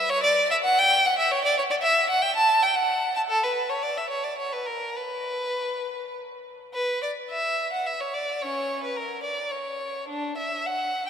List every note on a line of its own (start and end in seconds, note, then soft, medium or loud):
0.10 0.23 C#5 loud
0.24 0.50 D5 medium
0.51 0.56 E5 medium
0.64 0.77 F#5 loud
0.79 1.04 G5 loud
1.06 1.18 F#5 medium
1.19 1.30 E5 medium
1.31 1.43 C#5 medium
1.45 1.56 D5 medium
1.58 1.63 C#5 medium
1.70 1.75 D5 loud
1.82 2.08 E5 medium
2.10 2.22 F#5 medium
2.22 2.35 G5 medium
2.37 2.62 A5 loud
2.63 2.75 G5 medium
2.76 3.15 F#5 medium
3.16 3.21 A5 medium
3.29 3.42 A4 loud
3.43 3.70 B4 medium
3.70 3.83 C#5 medium
3.83 3.96 D5 medium
3.97 4.10 E5 medium
4.10 4.24 C#5 medium
4.24 4.38 D5 medium
4.38 4.52 C#5 medium
4.53 4.67 B4 medium
4.66 4.97 A#4 medium
4.97 6.16 B4 medium
6.74 7.01 B4 medium
7.03 7.11 D5 medium
7.31 7.71 E5 medium
7.73 7.86 F#5 medium
7.86 8.00 E5 medium
8.00 8.14 C#5 medium
8.14 8.41 D5 medium
8.42 8.80 C#4 medium
8.42 8.83 C#5 medium
8.84 8.97 B4 medium
8.97 9.24 A#4 medium
9.23 9.50 D5 medium
9.51 10.09 C#5 medium
10.09 10.38 D4 medium
10.38 10.65 E5 medium
10.66 11.08 F#5 medium